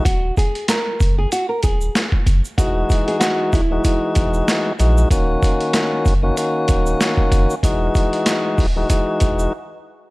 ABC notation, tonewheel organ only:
X:1
M:4/4
L:1/16
Q:"Swing 16ths" 1/4=95
K:Ebphr
V:1 name="Tonewheel organ"
z16 | [=E,^G,^D^F]6 z [E,G,DF] [E,G,DF]6 [E,G,DF]2 | [E,B,DG]6 z [E,B,DG] [E,B,DG]6- [E,B,DG] z | [=E,^G,^D^F]6 z [E,G,DF] [E,G,DF]4 z4 |]